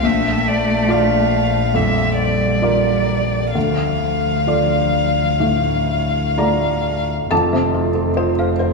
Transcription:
0.02 A#1 A3 E5
0.48 D5
0.89 F4 D5 F5
1.73 F2 G3 E5
2.18 D5
2.62 F4 A#4 D5
3.53 D2 F3 F5
4.47 F4 A4 D5
5.40 A2
6.37 A3 F4 D5 A#5
7.30 F1 F2 C4 F4 A5
7.53 C3 C5
7.74 F4
7.95 A4
8.17 F4 C5
8.39 C5 F5
8.59 A4 C5

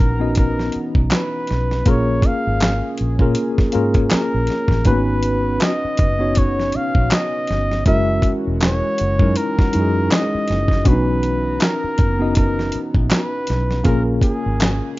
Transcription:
Already playing: E3 B3 C#4 D#4 F#4 A#4 A#5
0.00 A#1
0.19 B3 C#4 D#4 F#4 D#5
0.35 A#4, kick, closed hi-hat
0.59 snare
0.72 muted fingered electric bass stroke, closed hi-hat
0.95 B1, kick
1.11 B4, snare, clap, closed hi-hat
1.47 B1, snare, closed hi-hat
1.71 snare
1.86 A#1 C#3 A#3 C#4 F4 G#4 A#4 C#5, kick, closed hi-hat
2.22 kick, closed hi-hat
2.27 F5
2.47 G#1
2.60 snare, clap, closed hi-hat
2.98 A#1, closed hi-hat
3.19 A#2 A#3 C#4 F4 G#4 A#4, kick
3.35 closed hi-hat
3.58 muted fingered electric bass stroke, kick, snare
3.72 G#2 A#3 C#4 F4 G#4 A#4, closed hi-hat
3.94 kick, closed hi-hat
4.11 A#4, muted fingered electric bass stroke, snare, clap, closed hi-hat
4.34 A#1
4.47 snare, closed hi-hat
4.68 A1, kick, snare
4.85 G#1 A#3 B3 C#4 D#4 F#4 B4, kick, closed hi-hat
4.92 B3
5.23 closed hi-hat
5.60 D#5, snare, clap, closed hi-hat
5.84 muted fingered electric bass stroke
5.97 F#1, kick, closed hi-hat
6.19 B3 C#4 D#4 F#4 C#5
6.35 C#5, kick, closed hi-hat
6.60 snare
6.72 F5, muted fingered electric bass stroke, closed hi-hat
6.95 A#1, kick
7.11 D#5, snare, clap, closed hi-hat
7.47 G1, snare, closed hi-hat
7.71 snare
7.86 F#1 E3 G#3 C#4 E4 F#4 A#4 E5, kick, closed hi-hat
8.22 kick, closed hi-hat
8.47 E1
8.61 C#5, snare, clap, closed hi-hat
8.98 F#1, closed hi-hat
9.19 F#2 G#3 C#4 D#4 E4 A#4, kick
9.36 A#4, closed hi-hat
9.59 muted fingered electric bass stroke, kick, snare
9.73 F#2 G#3 C#4 D#4 E4 F#4, closed hi-hat
9.81 G#4
10.11 D#5, snare, clap, closed hi-hat
10.35 muted fingered electric bass stroke
10.48 F#1, snare, closed hi-hat
10.68 kick, snare
10.85 B1 B3 C#4 D4 F#4 B4 A#5, kick, closed hi-hat
10.92 D#4
11.23 closed hi-hat
11.60 A#4, snare, clap, closed hi-hat
11.84 muted fingered electric bass stroke
11.98 F#1, kick, closed hi-hat
12.19 B3 C#4 D#4 F#4 D#5
12.35 A#4, kick, closed hi-hat
12.59 snare
12.72 muted fingered electric bass stroke, closed hi-hat
12.95 A#1, kick
13.11 B4, snare, clap, closed hi-hat
13.47 B1, snare, closed hi-hat
13.71 snare
13.84 A#1 C#3 A#3 C#4 F4 G#4 A#4, kick, closed hi-hat
14.21 G#4, kick, closed hi-hat
14.46 G#1
14.60 snare, clap, closed hi-hat

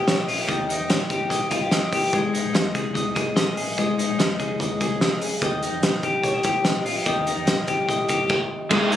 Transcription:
Already playing: D#3 D#4 G4
0.07 A#1 C#5, snare, closed hi-hat
0.17 D#5
0.27 A#1 F4, open hi-hat
0.38 G4
0.47 D#2 D#3 D#5, kick, closed hi-hat
0.69 D#4, closed hi-hat
0.80 F2
0.90 A#1 C#5, snare, closed hi-hat
1.00 D#5
1.10 G#1 G4, kick, closed hi-hat
1.30 A#1 D#5, kick, closed hi-hat
1.50 G1 F4, kick, closed hi-hat
1.61 G4
1.71 D#5, snare, closed hi-hat
1.93 G4, kick, open hi-hat
2.13 G#1 G#3 D#5, kick, closed hi-hat
2.34 D#4, closed hi-hat
2.45 A#1
2.54 D#2 D#5, snare, closed hi-hat
2.75 C#2 G#4, kick, closed hi-hat
2.94 D#2 D#5, kick, closed hi-hat
3.15 G#1 G#4, kick, closed hi-hat
3.36 A#1 D#5, snare, closed hi-hat
3.57 A#1 G#4, open hi-hat
3.78 G#1 G#3 D#5, kick, closed hi-hat
3.98 D#4, closed hi-hat
4.09 A#1
4.19 D#2 D#5, snare, closed hi-hat
4.39 C#2 G#4, kick, closed hi-hat
4.60 D#2 D#5, kick, closed hi-hat
4.81 C2 G#4, kick, closed hi-hat
5.01 D#5, snare, closed hi-hat
5.21 G#4, open hi-hat
5.42 D#2 D#3 D#5, kick, closed hi-hat
5.63 D#4, closed hi-hat
5.72 F2
5.83 A#1 D#5, snare, closed hi-hat
6.03 G#1 G4, kick, closed hi-hat
6.23 A#1 C#5, kick, closed hi-hat
6.34 D#5
6.43 G#1 G4, kick, closed hi-hat
6.65 A#1 D#5, snare, closed hi-hat
6.85 A#1 F4, open hi-hat
6.96 G4
7.06 D#2 D#3 D#5, kick, closed hi-hat
7.27 D#4, closed hi-hat
7.37 F2
7.47 A#1 D#5, snare, closed hi-hat
7.67 G#1 G4, kick, closed hi-hat
7.88 A#1 D#5, kick, closed hi-hat
8.09 G1 G4, kick, closed hi-hat
8.29 kick, crash
8.70 G#1 G#3 A#3 D#4 G#4, kick, crash
8.91 D#4 G#4, closed hi-hat

